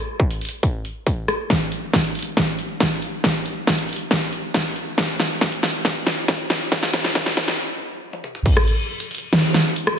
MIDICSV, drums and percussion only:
0, 0, Header, 1, 2, 480
1, 0, Start_track
1, 0, Tempo, 434783
1, 1657, Time_signature, 4, 2, 24, 8
1, 11030, End_track
2, 0, Start_track
2, 0, Title_t, "Drums"
2, 216, Note_on_c, 9, 36, 98
2, 327, Note_off_c, 9, 36, 0
2, 338, Note_on_c, 9, 42, 76
2, 448, Note_off_c, 9, 42, 0
2, 457, Note_on_c, 9, 42, 49
2, 497, Note_off_c, 9, 42, 0
2, 497, Note_on_c, 9, 42, 64
2, 536, Note_off_c, 9, 42, 0
2, 536, Note_on_c, 9, 42, 79
2, 647, Note_off_c, 9, 42, 0
2, 697, Note_on_c, 9, 36, 98
2, 697, Note_on_c, 9, 42, 75
2, 807, Note_off_c, 9, 36, 0
2, 807, Note_off_c, 9, 42, 0
2, 937, Note_on_c, 9, 42, 52
2, 1047, Note_off_c, 9, 42, 0
2, 1176, Note_on_c, 9, 36, 94
2, 1177, Note_on_c, 9, 42, 77
2, 1287, Note_off_c, 9, 36, 0
2, 1287, Note_off_c, 9, 42, 0
2, 1417, Note_on_c, 9, 37, 47
2, 1417, Note_on_c, 9, 42, 50
2, 1527, Note_off_c, 9, 37, 0
2, 1527, Note_off_c, 9, 42, 0
2, 1656, Note_on_c, 9, 36, 96
2, 1657, Note_on_c, 9, 38, 49
2, 1657, Note_on_c, 9, 42, 75
2, 1767, Note_off_c, 9, 36, 0
2, 1767, Note_off_c, 9, 38, 0
2, 1767, Note_off_c, 9, 42, 0
2, 1896, Note_on_c, 9, 42, 49
2, 2007, Note_off_c, 9, 42, 0
2, 2136, Note_on_c, 9, 36, 97
2, 2136, Note_on_c, 9, 38, 50
2, 2247, Note_off_c, 9, 36, 0
2, 2247, Note_off_c, 9, 38, 0
2, 2257, Note_on_c, 9, 42, 75
2, 2368, Note_off_c, 9, 42, 0
2, 2376, Note_on_c, 9, 42, 48
2, 2416, Note_off_c, 9, 42, 0
2, 2416, Note_on_c, 9, 42, 63
2, 2456, Note_off_c, 9, 42, 0
2, 2456, Note_on_c, 9, 42, 78
2, 2567, Note_off_c, 9, 42, 0
2, 2616, Note_on_c, 9, 36, 95
2, 2616, Note_on_c, 9, 38, 52
2, 2616, Note_on_c, 9, 42, 75
2, 2727, Note_off_c, 9, 36, 0
2, 2727, Note_off_c, 9, 38, 0
2, 2727, Note_off_c, 9, 42, 0
2, 2856, Note_on_c, 9, 42, 51
2, 2967, Note_off_c, 9, 42, 0
2, 3096, Note_on_c, 9, 36, 97
2, 3096, Note_on_c, 9, 38, 55
2, 3096, Note_on_c, 9, 42, 75
2, 3207, Note_off_c, 9, 36, 0
2, 3207, Note_off_c, 9, 38, 0
2, 3207, Note_off_c, 9, 42, 0
2, 3336, Note_on_c, 9, 42, 48
2, 3447, Note_off_c, 9, 42, 0
2, 3576, Note_on_c, 9, 36, 98
2, 3576, Note_on_c, 9, 38, 60
2, 3576, Note_on_c, 9, 42, 76
2, 3686, Note_off_c, 9, 36, 0
2, 3686, Note_off_c, 9, 38, 0
2, 3686, Note_off_c, 9, 42, 0
2, 3816, Note_on_c, 9, 42, 50
2, 3926, Note_off_c, 9, 42, 0
2, 4056, Note_on_c, 9, 36, 96
2, 4056, Note_on_c, 9, 38, 63
2, 4166, Note_off_c, 9, 38, 0
2, 4167, Note_off_c, 9, 36, 0
2, 4177, Note_on_c, 9, 42, 77
2, 4287, Note_off_c, 9, 42, 0
2, 4296, Note_on_c, 9, 42, 48
2, 4336, Note_off_c, 9, 42, 0
2, 4336, Note_on_c, 9, 42, 62
2, 4376, Note_off_c, 9, 42, 0
2, 4376, Note_on_c, 9, 42, 78
2, 4487, Note_off_c, 9, 42, 0
2, 4536, Note_on_c, 9, 36, 96
2, 4536, Note_on_c, 9, 38, 66
2, 4536, Note_on_c, 9, 42, 75
2, 4647, Note_off_c, 9, 36, 0
2, 4647, Note_off_c, 9, 38, 0
2, 4647, Note_off_c, 9, 42, 0
2, 4777, Note_on_c, 9, 42, 51
2, 4887, Note_off_c, 9, 42, 0
2, 5016, Note_on_c, 9, 36, 99
2, 5016, Note_on_c, 9, 38, 69
2, 5016, Note_on_c, 9, 42, 76
2, 5127, Note_off_c, 9, 36, 0
2, 5127, Note_off_c, 9, 38, 0
2, 5127, Note_off_c, 9, 42, 0
2, 5256, Note_on_c, 9, 42, 49
2, 5367, Note_off_c, 9, 42, 0
2, 5496, Note_on_c, 9, 36, 99
2, 5496, Note_on_c, 9, 38, 76
2, 5496, Note_on_c, 9, 42, 79
2, 5607, Note_off_c, 9, 36, 0
2, 5607, Note_off_c, 9, 38, 0
2, 5607, Note_off_c, 9, 42, 0
2, 5736, Note_on_c, 9, 38, 75
2, 5736, Note_on_c, 9, 42, 53
2, 5847, Note_off_c, 9, 38, 0
2, 5847, Note_off_c, 9, 42, 0
2, 5976, Note_on_c, 9, 36, 98
2, 5976, Note_on_c, 9, 38, 80
2, 6087, Note_off_c, 9, 36, 0
2, 6087, Note_off_c, 9, 38, 0
2, 6097, Note_on_c, 9, 42, 78
2, 6208, Note_off_c, 9, 42, 0
2, 6217, Note_on_c, 9, 38, 84
2, 6217, Note_on_c, 9, 42, 49
2, 6257, Note_off_c, 9, 42, 0
2, 6257, Note_on_c, 9, 42, 66
2, 6296, Note_off_c, 9, 42, 0
2, 6296, Note_on_c, 9, 42, 81
2, 6327, Note_off_c, 9, 38, 0
2, 6407, Note_off_c, 9, 42, 0
2, 6456, Note_on_c, 9, 38, 82
2, 6456, Note_on_c, 9, 42, 78
2, 6457, Note_on_c, 9, 36, 101
2, 6567, Note_off_c, 9, 36, 0
2, 6567, Note_off_c, 9, 38, 0
2, 6567, Note_off_c, 9, 42, 0
2, 6697, Note_on_c, 9, 38, 85
2, 6697, Note_on_c, 9, 42, 51
2, 6807, Note_off_c, 9, 38, 0
2, 6807, Note_off_c, 9, 42, 0
2, 6937, Note_on_c, 9, 36, 98
2, 6937, Note_on_c, 9, 38, 85
2, 6937, Note_on_c, 9, 42, 75
2, 7047, Note_off_c, 9, 36, 0
2, 7047, Note_off_c, 9, 38, 0
2, 7047, Note_off_c, 9, 42, 0
2, 7177, Note_on_c, 9, 38, 88
2, 7177, Note_on_c, 9, 42, 50
2, 7287, Note_off_c, 9, 38, 0
2, 7287, Note_off_c, 9, 42, 0
2, 7417, Note_on_c, 9, 36, 99
2, 7417, Note_on_c, 9, 38, 93
2, 7417, Note_on_c, 9, 42, 80
2, 7527, Note_off_c, 9, 36, 0
2, 7527, Note_off_c, 9, 38, 0
2, 7527, Note_off_c, 9, 42, 0
2, 7538, Note_on_c, 9, 38, 84
2, 7648, Note_off_c, 9, 38, 0
2, 7657, Note_on_c, 9, 38, 95
2, 7657, Note_on_c, 9, 42, 55
2, 7767, Note_off_c, 9, 38, 0
2, 7767, Note_off_c, 9, 42, 0
2, 7778, Note_on_c, 9, 38, 86
2, 7888, Note_off_c, 9, 38, 0
2, 7896, Note_on_c, 9, 36, 101
2, 7897, Note_on_c, 9, 38, 98
2, 8007, Note_off_c, 9, 36, 0
2, 8007, Note_off_c, 9, 38, 0
2, 8018, Note_on_c, 9, 38, 88
2, 8018, Note_on_c, 9, 42, 82
2, 8128, Note_off_c, 9, 38, 0
2, 8128, Note_off_c, 9, 42, 0
2, 8137, Note_on_c, 9, 38, 105
2, 8137, Note_on_c, 9, 42, 51
2, 8177, Note_off_c, 9, 42, 0
2, 8177, Note_on_c, 9, 42, 70
2, 8217, Note_off_c, 9, 42, 0
2, 8217, Note_on_c, 9, 42, 84
2, 8248, Note_off_c, 9, 38, 0
2, 8257, Note_on_c, 9, 38, 91
2, 8327, Note_off_c, 9, 42, 0
2, 8368, Note_off_c, 9, 38, 0
2, 8977, Note_on_c, 9, 48, 53
2, 9088, Note_off_c, 9, 48, 0
2, 9097, Note_on_c, 9, 47, 79
2, 9207, Note_off_c, 9, 47, 0
2, 9218, Note_on_c, 9, 45, 86
2, 9328, Note_off_c, 9, 45, 0
2, 9337, Note_on_c, 9, 36, 120
2, 9337, Note_on_c, 9, 42, 84
2, 9337, Note_on_c, 9, 49, 102
2, 9447, Note_off_c, 9, 36, 0
2, 9447, Note_off_c, 9, 42, 0
2, 9447, Note_off_c, 9, 49, 0
2, 9458, Note_on_c, 9, 37, 65
2, 9568, Note_off_c, 9, 37, 0
2, 9577, Note_on_c, 9, 42, 57
2, 9687, Note_off_c, 9, 42, 0
2, 9938, Note_on_c, 9, 42, 85
2, 10048, Note_off_c, 9, 42, 0
2, 10057, Note_on_c, 9, 42, 54
2, 10097, Note_off_c, 9, 42, 0
2, 10097, Note_on_c, 9, 42, 71
2, 10137, Note_off_c, 9, 42, 0
2, 10137, Note_on_c, 9, 42, 86
2, 10248, Note_off_c, 9, 42, 0
2, 10297, Note_on_c, 9, 38, 121
2, 10297, Note_on_c, 9, 42, 82
2, 10407, Note_off_c, 9, 38, 0
2, 10407, Note_off_c, 9, 42, 0
2, 10537, Note_on_c, 9, 38, 60
2, 10537, Note_on_c, 9, 42, 54
2, 10647, Note_off_c, 9, 38, 0
2, 10647, Note_off_c, 9, 42, 0
2, 10777, Note_on_c, 9, 42, 81
2, 10888, Note_off_c, 9, 42, 0
2, 10898, Note_on_c, 9, 37, 81
2, 11009, Note_off_c, 9, 37, 0
2, 11030, End_track
0, 0, End_of_file